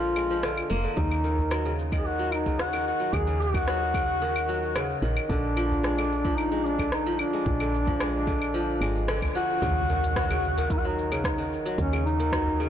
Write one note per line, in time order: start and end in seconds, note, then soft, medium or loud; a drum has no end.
0.00 0.62 A#1 medium
0.00 0.42 D3 medium
0.00 0.29 F3 medium
0.00 0.66 F4 loud
0.04 cabasa soft
0.16 0.48 G#3 medium
0.16 cabasa medium
0.16 claves medium
0.30 0.48 F3 medium
0.30 cabasa soft
0.43 0.83 D3 medium
0.43 cross-stick medium
0.43 cabasa soft
0.57 cabasa soft
0.57 claves medium
0.70 0.88 F1 medium
0.70 2.63 A#3 loud
0.70 cabasa medium
0.84 1.02 D3 medium
0.84 cabasa soft
0.96 2.92 D#2 medium
0.96 1.29 C#3 medium
0.96 1.74 D#4 loud
0.96 kick loud
0.96 cabasa soft
1.11 cabasa soft
1.11 claves medium
1.24 1.70 D#3 medium
1.24 cabasa medium
1.39 udu medium
1.39 cabasa soft
1.51 1.70 F#3 medium
1.51 cross-stick medium
1.51 cabasa soft
1.51 claves medium
1.65 1.97 C#3 medium
1.65 cabasa soft
1.79 cabasa medium
1.92 2.51 D#3 medium
1.92 kick loud
1.92 cabasa soft
1.92 claves medium
1.98 2.08 G#4 medium
2.07 2.35 F#4 medium
2.07 cabasa soft
2.19 2.51 F#3 medium
2.19 cabasa soft
2.32 2.62 D#4 medium
2.32 cabasa medium
2.32 claves medium
2.46 2.78 C#3 medium
2.46 kick medium
2.46 udu medium
2.46 cabasa soft
2.59 2.86 F#4 medium
2.59 cross-stick medium
2.59 cabasa soft
2.73 3.32 D#3 medium
2.73 cabasa soft
2.73 claves medium
2.87 3.16 F#4 loud
2.87 cabasa medium
3.00 3.32 F#3 medium
3.00 cabasa soft
3.13 4.94 D#2 medium
3.13 3.43 G#4 loud
3.13 kick loud
3.13 cabasa soft
3.13 claves medium
3.27 3.59 C#3 medium
3.27 cabasa soft
3.41 5.03 F#4 loud
3.41 cabasa medium
3.54 4.00 D#3 medium
3.54 kick loud
3.54 udu medium
3.54 cabasa soft
3.54 claves medium
3.68 4.00 F#3 medium
3.68 cross-stick medium
3.68 cabasa soft
3.82 cabasa soft
3.94 4.27 C#3 medium
3.94 kick loud
3.94 cabasa medium
3.94 claves medium
4.10 cabasa soft
4.22 4.81 D#3 medium
4.22 cabasa soft
4.36 cabasa soft
4.36 claves medium
4.49 4.81 F#3 medium
4.49 cabasa medium
4.64 cabasa soft
4.75 5.08 C#3 medium
4.75 cross-stick medium
4.75 cabasa soft
4.75 claves medium
4.91 cabasa soft
5.02 5.19 A#1 medium
5.02 5.35 D#3 medium
5.02 cabasa medium
5.17 cabasa soft
5.17 claves medium
5.28 7.24 A#1 medium
5.28 5.97 D3 medium
5.28 6.38 D4 loud
5.28 kick loud
5.28 cabasa soft
5.45 cabasa soft
5.57 6.02 F3 medium
5.57 cabasa medium
5.57 claves medium
5.71 udu medium
5.71 cabasa soft
5.83 6.02 G#3 medium
5.83 cross-stick medium
5.83 cabasa soft
5.98 6.78 D3 medium
5.98 cabasa soft
5.98 claves medium
6.12 cabasa medium
6.25 6.83 F3 medium
6.25 kick medium
6.25 cabasa soft
6.37 6.66 D#4 loud
6.37 cabasa soft
6.37 claves medium
6.52 6.83 G#3 medium
6.52 cabasa soft
6.65 6.92 D4 loud
6.65 cabasa medium
6.79 7.59 D3 medium
6.79 kick medium
6.79 udu medium
6.79 cabasa soft
6.79 claves medium
6.92 7.17 D#4 loud
6.92 cross-stick medium
6.92 cabasa soft
7.06 7.65 F3 medium
7.06 cabasa soft
7.19 9.05 D4 loud
7.19 cabasa medium
7.19 claves medium
7.33 7.65 G#3 medium
7.33 cabasa soft
7.46 8.80 A#1 loud
7.46 kick loud
7.46 cabasa soft
7.60 8.26 D3 medium
7.60 cabasa soft
7.60 claves medium
7.74 cabasa medium
7.87 8.32 F3 medium
7.87 kick loud
7.87 udu medium
7.87 cabasa soft
8.00 8.32 G#3 medium
8.00 cross-stick loud
8.00 cabasa soft
8.00 claves medium
8.16 cabasa soft
8.27 9.07 D3 medium
8.27 kick medium
8.27 cabasa medium
8.42 cabasa soft
8.42 claves medium
8.54 9.13 F3 medium
8.54 cabasa soft
8.70 cabasa soft
8.81 9.27 G#1 medium
8.81 9.13 G#3 medium
8.81 cabasa medium
8.81 claves medium
8.96 cabasa soft
9.08 9.67 D3 medium
9.08 cross-stick medium
9.08 cabasa soft
9.22 kick medium
9.22 udu medium
9.22 cabasa soft
9.22 claves medium
9.35 9.67 F3 medium
9.35 10.72 F#4 loud
9.35 cabasa medium
9.50 cabasa soft
9.62 11.57 D#2 loud
9.62 9.94 C#3 medium
9.62 kick loud
9.62 closed hi-hat soft
9.62 impact medium
9.62 cabasa soft
9.78 cabasa soft
9.89 10.35 D#3 medium
9.89 cabasa medium
10.04 closed hi-hat medium
10.04 cabasa soft
10.16 10.35 F#3 medium
10.16 kick loud
10.16 cross-stick loud
10.16 closed hi-hat soft
10.16 cabasa soft
10.30 10.62 C#3 medium
10.30 udu medium
10.30 cabasa soft
10.30 claves medium
10.45 cabasa medium
10.57 11.16 D#3 medium
10.57 closed hi-hat medium
10.57 udu medium
10.57 cabasa soft
10.70 10.79 D#4 medium
10.70 kick loud
10.70 closed hi-hat soft
10.70 cabasa soft
10.78 10.87 F#4 medium
10.85 11.16 F#3 medium
10.85 11.52 D#4 loud
10.85 cabasa soft
10.99 cabasa medium
11.12 11.43 C#3 medium
11.12 closed hi-hat medium
11.12 cabasa soft
11.12 claves medium
11.24 kick loud
11.24 cross-stick loud
11.24 closed hi-hat soft
11.24 cabasa soft
11.38 11.97 D#3 medium
11.38 cabasa soft
11.53 cabasa medium
11.66 11.97 F#3 medium
11.66 closed hi-hat medium
11.66 cabasa soft
11.78 12.69 D#2 loud
11.78 12.04 C#4 loud
11.78 kick loud
11.78 closed hi-hat soft
11.78 cabasa soft
11.93 12.24 C#3 medium
11.93 cabasa soft
11.93 claves medium
12.06 12.69 D#4 loud
12.06 cabasa medium
12.20 12.65 D#3 medium
12.20 closed hi-hat medium
12.20 cabasa soft
12.32 12.65 F#3 medium
12.32 kick loud
12.32 cross-stick loud
12.32 closed hi-hat soft
12.32 cabasa soft
12.47 udu loud
12.47 cabasa soft
12.60 12.69 C#3 medium
12.60 cabasa medium